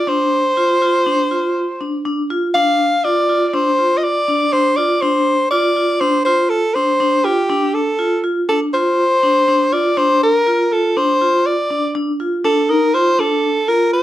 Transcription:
0.00 0.10 D5 medium
0.07 0.36 D4 medium
0.07 2.06 C5 medium
0.57 0.71 F4 medium
0.82 0.96 F4 medium
1.06 1.21 D4 medium
1.31 1.60 F4 medium
1.81 1.95 D4 medium
2.05 2.20 D4 medium
2.30 2.45 F4 medium
2.54 2.84 D4 medium
2.54 3.06 F5 medium
3.04 3.19 F4 medium
3.04 3.48 D5 medium
3.29 3.44 F4 medium
3.48 3.56 D5 medium
3.54 3.68 D4 medium
3.54 3.99 C5 medium
3.79 4.07 F4 medium
3.98 4.05 D#5 medium
4.04 4.54 D5 medium
4.28 4.42 D4 medium
4.53 4.67 D4 medium
4.53 4.78 C5 medium
4.77 4.92 F4 medium
4.77 5.03 D5 medium
5.02 5.31 D4 medium
5.02 5.50 C5 medium
5.51 5.66 F4 medium
5.51 6.02 D5 medium
5.76 5.91 F4 medium
6.01 6.15 D4 medium
6.01 6.24 C5 medium
6.25 6.55 F4 medium
6.25 6.51 C5 medium
6.49 6.76 A4 medium
6.74 6.90 D4 medium
6.74 7.26 C5 medium
7.00 7.15 D4 medium
7.25 7.39 F4 medium
7.25 7.76 G4 medium
7.50 7.78 D4 medium
7.74 8.22 A4 medium
7.99 8.13 F4 medium
8.24 8.38 F4 medium
8.49 8.63 D4 medium
8.49 8.60 A4 medium
8.74 9.03 F4 medium
8.74 9.75 C5 loud
9.23 9.37 D4 medium
9.48 9.62 D4 medium
9.73 9.87 F4 medium
9.73 9.99 D5 medium
9.97 10.26 D4 medium
9.97 10.22 C5 medium
10.23 10.74 A#4 loud
10.47 10.61 F4 medium
10.71 10.86 F4 medium
10.71 10.99 A4 medium
10.97 11.11 D4 medium
10.97 11.48 C5 medium
11.21 11.50 F4 medium
11.46 11.96 D5 medium
11.71 11.85 D4 medium
11.95 12.10 D4 medium
12.20 12.34 F4 medium
12.45 12.59 D4 medium
12.45 12.72 A4 medium
12.69 12.84 D#4 medium
12.69 12.96 A#4 medium
12.94 13.09 F4 medium
12.94 13.21 C5 medium
13.19 13.48 D4 medium
13.19 13.70 A4 medium
13.68 13.97 F4 medium
13.68 13.93 A#4 medium
13.93 14.03 C5 medium

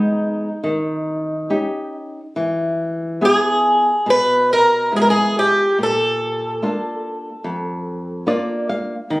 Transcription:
0.00 0.48 G#3 soft
0.00 0.48 B3 soft
0.00 0.49 D#4 soft
0.00 1.92 D#4 medium
0.64 1.48 D#3 medium
1.50 2.20 C#4 soft
1.50 2.20 D#4 soft
1.50 2.20 G4 soft
2.36 3.19 E3 soft
3.21 3.90 B3 soft
3.21 3.90 E4 soft
3.21 3.90 G#4 soft
3.21 4.10 G#4 medium
4.06 4.90 B2 medium
4.10 4.52 B4 medium
4.53 4.96 A#4 medium
4.92 5.61 G#3 soft
4.92 5.60 B3 soft
4.92 5.60 E4 soft
4.96 5.01 G#4 medium
5.02 5.08 A#4 medium
5.10 5.38 G#4 medium
5.39 5.77 G4 medium
5.78 6.60 A#2 medium
5.83 8.68 A4 medium
6.63 7.29 A#3 soft
6.63 7.29 D4 soft
6.63 7.29 F4 soft
7.44 8.25 F2 medium
8.27 8.94 A#3 soft
8.27 8.94 D4 soft
8.27 8.94 F4 soft
8.27 8.66 D5 medium
8.69 9.08 F5 medium
9.10 9.20 D#3 medium

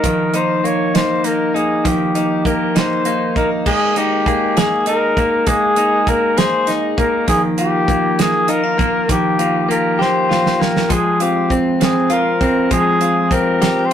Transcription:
0.00 0.34 A#3 soft
0.00 0.64 A#3 medium
0.00 0.34 D#4 medium
0.00 1.24 D#4 medium
0.00 0.10 G#4 medium
0.00 0.38 A#4 medium
0.00 kick medium
0.00 closed hi-hat medium
0.04 1.84 D#3 medium
0.04 1.84 F3 medium
0.34 0.95 A#3 medium
0.34 0.94 D#4 medium
0.34 0.67 C5 medium
0.34 closed hi-hat medium
0.64 1.24 A#3 medium
0.64 0.98 C#5 loud
0.64 closed hi-hat soft
0.94 1.55 A#3 medium
0.94 1.54 D#4 medium
0.94 1.27 C5 medium
0.94 snare loud
0.94 closed hi-hat medium
1.24 2.45 A#3 medium
1.24 3.05 D#4 medium
1.24 1.57 A#4 medium
1.24 closed hi-hat medium
1.54 2.16 A#3 medium
1.54 2.15 D#4 medium
1.54 1.85 G#4 medium
1.54 closed hi-hat soft
1.85 5.35 D#3 medium
1.85 3.66 F3 medium
1.85 2.42 G4 medium
1.85 kick medium
1.85 closed hi-hat medium
2.15 2.76 A#3 medium
2.15 2.75 D#4 medium
2.15 closed hi-hat medium
2.45 3.05 A#3 medium
2.45 3.72 G4 medium
2.45 2.79 A#4 medium
2.45 kick medium
2.45 closed hi-hat medium
2.75 3.36 A#3 medium
2.75 3.36 D#4 medium
2.75 3.36 C5 loud
2.75 snare loud
2.75 closed hi-hat medium
3.05 4.27 A#3 medium
3.05 4.86 D#4 medium
3.05 closed hi-hat medium
3.36 3.66 A#3 medium
3.36 3.97 D#4 medium
3.36 3.50 A#4 medium
3.36 kick medium
3.36 closed hi-hat soft
3.66 5.46 G#3 medium
3.66 3.96 A#3 medium
3.66 3.99 G#4 loud
3.66 kick loud
3.66 crash medium
3.96 4.56 A#3 medium
3.96 4.87 D#4 medium
3.96 4.60 G4 loud
3.96 closed hi-hat medium
4.26 5.17 A#3 medium
4.26 6.06 G#4 medium
4.26 kick medium
4.26 closed hi-hat medium
4.57 5.16 A#3 medium
4.57 6.37 G#4 medium
4.57 4.87 G#4 medium
4.57 snare loud
4.57 closed hi-hat medium
4.86 6.67 D#4 medium
4.86 5.77 D#4 medium
4.86 5.49 A#4 loud
4.86 closed hi-hat medium
5.17 5.46 A#3 medium
5.17 6.08 A#3 medium
5.17 kick medium
5.17 closed hi-hat soft
5.47 7.28 G#3 medium
5.47 5.76 A#3 medium
5.47 6.10 G#4 loud
5.47 kick loud
5.47 closed hi-hat medium
5.76 6.36 A#3 medium
5.76 6.67 D#4 medium
5.76 closed hi-hat medium
6.07 6.98 A#3 medium
6.07 7.34 G#4 medium
6.07 6.40 A#4 loud
6.07 kick medium
6.07 closed hi-hat medium
6.37 6.97 A#3 medium
6.37 7.34 G#4 medium
6.37 6.71 C5 loud
6.37 snare loud
6.37 closed hi-hat medium
6.67 8.49 D#4 medium
6.67 7.58 D#4 medium
6.67 snare soft
6.67 closed hi-hat medium
6.97 7.57 A#3 medium
6.97 7.88 A#3 medium
6.97 7.27 A#4 medium
6.97 kick loud
6.97 closed hi-hat soft
7.28 9.08 D#3 medium
7.28 9.09 F3 medium
7.28 7.42 G#4 loud
7.28 kick medium
7.28 closed hi-hat loud
7.58 8.18 A#3 medium
7.58 8.48 F4 medium
7.58 8.22 G4 loud
7.58 closed hi-hat medium
7.88 8.77 A#3 medium
7.88 kick medium
7.88 closed hi-hat medium
8.19 8.78 A#3 medium
8.19 8.51 G#4 loud
8.19 snare loud
8.19 closed hi-hat medium
8.48 8.63 D#4 medium
8.48 10.30 F4 medium
8.48 9.10 A#4 loud
8.48 closed hi-hat medium
8.63 9.38 F4 soft
8.78 9.67 A#3 medium
8.78 9.38 A#3 medium
8.78 kick loud
8.78 closed hi-hat soft
9.09 10.89 D#3 medium
9.09 10.90 F3 medium
9.09 9.66 G4 loud
9.09 kick medium
9.09 closed hi-hat loud
9.39 9.99 A#3 medium
9.39 10.29 F4 medium
9.39 closed hi-hat medium
9.69 10.58 A#3 medium
9.69 12.13 G4 medium
9.69 10.03 A#4 loud
9.69 closed hi-hat medium
9.99 10.60 A#3 medium
9.99 11.23 G4 medium
9.99 10.63 C5 medium
9.99 snare medium
10.29 11.20 F4 medium
10.29 12.10 F4 medium
10.29 snare medium
10.46 snare medium
10.59 10.96 A#3 medium
10.59 10.97 A#3 soft
10.59 10.93 A#4 medium
10.59 snare medium
10.77 snare medium
10.89 12.70 F3 medium
10.89 12.70 G#3 medium
10.89 11.23 G#4 loud
10.89 kick loud
10.89 closed hi-hat loud
11.20 11.80 C4 medium
11.20 12.09 F4 medium
11.20 11.55 G4 medium
11.20 closed hi-hat medium
11.50 12.40 C4 medium
11.50 kick medium
11.50 closed hi-hat medium
11.80 12.40 C4 medium
11.80 12.14 G#4 medium
11.80 snare loud
11.80 closed hi-hat medium
12.10 13.00 F4 medium
12.10 13.90 F4 medium
12.10 12.72 A#4 loud
12.10 closed hi-hat medium
12.41 13.00 C4 medium
12.41 13.31 C4 medium
12.41 kick medium
12.41 closed hi-hat soft
12.71 13.93 F3 medium
12.71 13.93 G#3 medium
12.71 13.34 G#4 loud
12.71 kick loud
12.71 closed hi-hat loud
13.01 13.61 C4 medium
13.01 13.90 F4 medium
13.01 closed hi-hat medium
13.31 13.93 C4 medium
13.31 13.93 G4 medium
13.31 13.87 A#4 loud
13.31 kick medium
13.31 closed hi-hat medium
13.61 13.93 C4 medium
13.61 13.93 G4 medium
13.61 snare loud
13.61 closed hi-hat medium
13.86 13.93 C5 medium

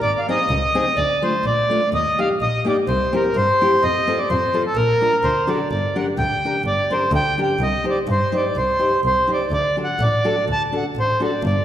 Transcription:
0.02 0.10 G#1 medium
0.02 0.20 D5 loud
0.18 0.27 F5 medium
0.28 0.38 C4 medium
0.28 0.38 D#4 medium
0.28 0.38 G#4 medium
0.28 0.99 D#5 loud
0.50 0.58 C#2 loud
0.75 0.85 C4 medium
0.75 0.85 D#4 medium
0.75 0.85 G#4 medium
0.97 1.06 D2 medium
0.97 1.23 D5 loud
1.22 1.32 A3 medium
1.22 1.32 D4 soft
1.22 1.32 F4 medium
1.22 1.45 C5 medium
1.44 1.52 A#1 medium
1.44 1.90 D5 loud
1.70 1.80 A3 soft
1.70 1.80 D4 soft
1.70 1.80 F4 medium
1.93 2.01 D#2 medium
1.93 2.20 D#5 loud
2.18 2.28 A#3 soft
2.18 2.28 D#4 soft
2.18 2.28 G4 medium
2.18 2.29 F5 loud
2.41 2.49 A#1 medium
2.41 2.65 D#5 loud
2.65 2.75 A#3 medium
2.65 2.75 D#4 medium
2.65 2.76 G4 medium
2.65 2.77 D5 medium
2.87 2.96 C2 loud
2.87 3.14 C5 loud
3.13 3.22 C4 medium
3.13 3.23 E4 medium
3.13 3.23 G4 medium
3.13 3.36 A#4 medium
3.35 3.43 G2 loud
3.35 3.84 C5 loud
3.61 3.70 C4 medium
3.61 3.70 E4 medium
3.61 3.71 G4 medium
3.83 3.91 F2 medium
3.83 4.19 D#5 loud
4.07 4.17 C4 medium
4.07 4.17 F4 medium
4.07 4.17 A4 medium
4.18 4.29 D5 medium
4.29 4.38 F2 loud
4.29 4.63 C5 medium
4.54 4.63 C4 medium
4.54 4.64 F4 medium
4.54 4.64 A4 medium
4.67 4.77 A4 medium
4.76 4.84 A#1 loud
4.76 5.45 A#4 loud
5.01 5.11 D4 medium
5.01 5.11 F4 soft
5.01 5.12 A#4 medium
5.24 5.32 D2 medium
5.24 5.50 C5 medium
5.47 5.58 D4 medium
5.47 5.58 F#4 medium
5.47 5.58 A4 medium
5.47 5.68 D5 medium
5.70 5.79 G1 medium
5.70 5.97 D5 medium
5.96 6.06 D4 medium
5.96 6.06 G4 soft
5.96 6.06 A#4 medium
5.96 6.06 F#5 medium
6.18 6.26 D2 loud
6.18 6.62 G5 loud
6.45 6.54 D4 medium
6.45 6.55 G4 soft
6.45 6.55 A#4 medium
6.65 6.73 G1 medium
6.65 6.93 D5 loud
6.90 7.01 D4 medium
6.90 7.01 G4 soft
6.90 7.02 A#4 medium
6.90 7.12 C5 medium
7.12 7.20 D2 loud
7.12 7.40 G5 loud
7.38 7.48 D4 medium
7.38 7.48 G4 medium
7.38 7.48 A#4 medium
7.42 7.63 G5 medium
7.59 7.67 C2 loud
7.59 7.85 D#5 loud
7.84 7.95 D#4 soft
7.84 7.95 G4 soft
7.84 7.95 C5 medium
7.90 7.99 D5 medium
8.08 8.16 G2 loud
8.08 8.33 C5 medium
8.32 8.43 D#4 medium
8.32 8.43 G4 soft
8.32 8.43 C5 medium
8.32 8.57 D5 medium
8.56 8.64 C2 medium
8.56 9.01 C5 medium
8.79 8.90 D#4 soft
8.79 8.90 G4 soft
8.79 8.90 C5 medium
9.04 9.12 C2 loud
9.04 9.31 C5 medium
9.27 9.38 D#4 medium
9.27 9.38 G4 soft
9.27 9.39 C5 medium
9.33 9.51 D5 medium
9.51 9.59 D2 medium
9.51 9.76 D5 loud
9.77 9.87 D4 soft
9.77 9.87 F#4 soft
9.77 9.87 A4 medium
9.84 10.03 F#5 medium
10.00 10.08 A1 loud
10.00 10.45 D5 loud
10.24 10.34 D4 medium
10.24 10.35 F#4 medium
10.24 10.35 A4 medium
10.48 10.56 D2 medium
10.52 10.63 A5 loud
10.72 10.82 D4 medium
10.72 10.82 F#4 soft
10.72 10.83 A4 medium
10.77 10.86 F#5 medium
10.96 11.04 A1 medium
11.00 11.21 C5 loud
11.20 11.30 D4 medium
11.20 11.31 F#4 medium
11.20 11.31 A4 medium
11.24 11.43 D5 medium
11.43 11.51 G1 loud
11.43 11.65 D5 medium

